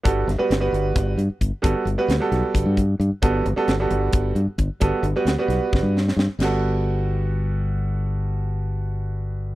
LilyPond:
<<
  \new Staff \with { instrumentName = "Grand piano" } { \time 7/8 \key g \major \tempo 4 = 132 <g b fis' a'>8 r16 <g b fis' b'>16 r16 <g b fis' b'>4~ <g b fis' b'>16 r4 | <g b fis' a'>8 r16 <g b fis' b'>16 r16 <g b fis' a'>4~ <g b fis' a'>16 r4 | <g b fis' a'>8 r16 <g b fis' a'>16 r16 <g b fis' a'>4~ <g b fis' a'>16 r4 | <g b fis' a'>8 r16 <g b fis' b'>16 r16 <g b fis' b'>4~ <g b fis' b'>16 r4 |
<g b fis' a'>2.~ <g b fis' a'>8~ | <g b fis' a'>2.~ <g b fis' a'>8 | }
  \new Staff \with { instrumentName = "Fingered electric bass" } { \clef bass \time 7/8 \key g \major g,,8 g,,16 r16 g,,8 g,,8 g,,8 g,16 r16 g,,16 r16 | g,,16 r16 g,,16 r16 d,16 r16 b,,16 r16 g,,16 g,8. g,16 r16 | g,,8 g,,16 r16 g,,8 g,,8 g,,8 g,16 r16 g,,16 r16 | g,,16 r16 g,,16 r16 d,16 r16 b,,16 r16 g,,16 g,8. g,16 r16 |
g,,2.~ g,,8~ | g,,2.~ g,,8 | }
  \new DrumStaff \with { instrumentName = "Drums" } \drummode { \time 7/8 <hh bd>8 <hh sn>8 <hh sn>8 hh8 <hh bd>8 hh8 <hh bd>8 | <hh bd>8 hh8 <hh sn>8 <hh sn>8 <hh bd>8 <hh bd>8 hh8 | <hh bd>8 hh8 <hh sn>8 hh8 <hh bd>8 hh8 <hh bd>8 | <hh bd>8 hh8 <hh sn>8 <hh sn>8 <bd sn>8 sn16 sn16 sn8 |
<cymc sn>4 r4 r4. | r4 r4 r4. | }
>>